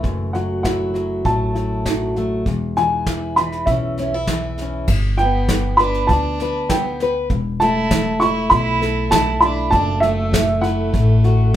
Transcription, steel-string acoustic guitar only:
0, 0, Header, 1, 2, 480
1, 0, Start_track
1, 0, Tempo, 605449
1, 28, Time_signature, 4, 2, 24, 8
1, 9165, End_track
2, 0, Start_track
2, 0, Title_t, "Steel-string acoustic guitar"
2, 0, Program_c, 0, 25
2, 0, Note_on_c, 0, 52, 49
2, 0, Note_on_c, 0, 57, 48
2, 24, Note_on_c, 0, 42, 60
2, 272, Note_off_c, 0, 52, 0
2, 275, Note_on_c, 0, 54, 55
2, 515, Note_on_c, 0, 64, 50
2, 734, Note_off_c, 0, 54, 0
2, 744, Note_on_c, 0, 54, 50
2, 979, Note_off_c, 0, 57, 0
2, 988, Note_on_c, 0, 57, 52
2, 1220, Note_off_c, 0, 64, 0
2, 1230, Note_on_c, 0, 64, 48
2, 1461, Note_off_c, 0, 54, 0
2, 1470, Note_on_c, 0, 54, 51
2, 1710, Note_off_c, 0, 57, 0
2, 1723, Note_on_c, 0, 57, 47
2, 1920, Note_off_c, 0, 42, 0
2, 1922, Note_off_c, 0, 54, 0
2, 1922, Note_off_c, 0, 64, 0
2, 1957, Note_off_c, 0, 57, 0
2, 1959, Note_on_c, 0, 40, 60
2, 2202, Note_on_c, 0, 52, 55
2, 2455, Note_on_c, 0, 64, 46
2, 2675, Note_off_c, 0, 52, 0
2, 2684, Note_on_c, 0, 52, 48
2, 2938, Note_on_c, 0, 61, 50
2, 3159, Note_off_c, 0, 61, 0
2, 3164, Note_off_c, 0, 64, 0
2, 3169, Note_on_c, 0, 61, 47
2, 3284, Note_off_c, 0, 61, 0
2, 3284, Note_on_c, 0, 64, 38
2, 3398, Note_off_c, 0, 52, 0
2, 3413, Note_on_c, 0, 52, 46
2, 3658, Note_on_c, 0, 61, 43
2, 3856, Note_off_c, 0, 61, 0
2, 3875, Note_off_c, 0, 40, 0
2, 3878, Note_off_c, 0, 64, 0
2, 3878, Note_on_c, 0, 43, 68
2, 3882, Note_off_c, 0, 52, 0
2, 4141, Note_on_c, 0, 59, 56
2, 4307, Note_off_c, 0, 43, 0
2, 4366, Note_on_c, 0, 55, 54
2, 4600, Note_on_c, 0, 71, 60
2, 4791, Note_off_c, 0, 55, 0
2, 4839, Note_on_c, 0, 50, 60
2, 5076, Note_off_c, 0, 71, 0
2, 5089, Note_on_c, 0, 71, 57
2, 5267, Note_off_c, 0, 50, 0
2, 5336, Note_on_c, 0, 55, 56
2, 5560, Note_off_c, 0, 71, 0
2, 5569, Note_on_c, 0, 71, 60
2, 5755, Note_off_c, 0, 55, 0
2, 5771, Note_off_c, 0, 71, 0
2, 5777, Note_off_c, 0, 59, 0
2, 5802, Note_on_c, 0, 40, 69
2, 6042, Note_on_c, 0, 57, 55
2, 6228, Note_off_c, 0, 40, 0
2, 6274, Note_on_c, 0, 52, 59
2, 6512, Note_on_c, 0, 64, 53
2, 6704, Note_off_c, 0, 52, 0
2, 6747, Note_on_c, 0, 47, 64
2, 6990, Note_on_c, 0, 69, 61
2, 7180, Note_off_c, 0, 47, 0
2, 7224, Note_on_c, 0, 52, 55
2, 7462, Note_off_c, 0, 64, 0
2, 7465, Note_on_c, 0, 64, 55
2, 7659, Note_off_c, 0, 52, 0
2, 7696, Note_on_c, 0, 42, 71
2, 7720, Note_off_c, 0, 64, 0
2, 7948, Note_off_c, 0, 57, 0
2, 7951, Note_on_c, 0, 57, 59
2, 8134, Note_off_c, 0, 42, 0
2, 8177, Note_on_c, 0, 54, 63
2, 8413, Note_on_c, 0, 64, 55
2, 8615, Note_off_c, 0, 54, 0
2, 8663, Note_on_c, 0, 42, 62
2, 8912, Note_off_c, 0, 69, 0
2, 8915, Note_on_c, 0, 66, 59
2, 9097, Note_off_c, 0, 42, 0
2, 9165, Note_off_c, 0, 57, 0
2, 9165, Note_off_c, 0, 64, 0
2, 9165, Note_off_c, 0, 66, 0
2, 9165, End_track
0, 0, End_of_file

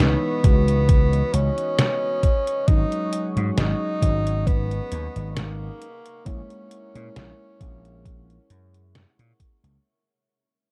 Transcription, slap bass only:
0, 0, Header, 1, 2, 480
1, 0, Start_track
1, 0, Tempo, 895522
1, 1437, Time_signature, 4, 2, 24, 8
1, 5744, End_track
2, 0, Start_track
2, 0, Title_t, "Slap bass"
2, 0, Program_c, 0, 36
2, 0, Note_on_c, 0, 37, 90
2, 75, Note_off_c, 0, 37, 0
2, 237, Note_on_c, 0, 37, 83
2, 647, Note_off_c, 0, 37, 0
2, 716, Note_on_c, 0, 37, 106
2, 795, Note_off_c, 0, 37, 0
2, 1436, Note_on_c, 0, 32, 103
2, 1515, Note_off_c, 0, 32, 0
2, 1804, Note_on_c, 0, 44, 102
2, 1872, Note_off_c, 0, 44, 0
2, 1916, Note_on_c, 0, 32, 88
2, 1995, Note_off_c, 0, 32, 0
2, 2156, Note_on_c, 0, 32, 83
2, 2566, Note_off_c, 0, 32, 0
2, 2636, Note_on_c, 0, 39, 101
2, 2715, Note_off_c, 0, 39, 0
2, 2765, Note_on_c, 0, 32, 95
2, 3047, Note_off_c, 0, 32, 0
2, 3357, Note_on_c, 0, 34, 103
2, 3435, Note_off_c, 0, 34, 0
2, 3726, Note_on_c, 0, 46, 102
2, 3793, Note_off_c, 0, 46, 0
2, 3838, Note_on_c, 0, 34, 86
2, 3916, Note_off_c, 0, 34, 0
2, 4078, Note_on_c, 0, 34, 85
2, 4488, Note_off_c, 0, 34, 0
2, 4556, Note_on_c, 0, 42, 101
2, 4844, Note_off_c, 0, 42, 0
2, 4926, Note_on_c, 0, 46, 95
2, 4993, Note_off_c, 0, 46, 0
2, 5165, Note_on_c, 0, 37, 88
2, 5233, Note_off_c, 0, 37, 0
2, 5744, End_track
0, 0, End_of_file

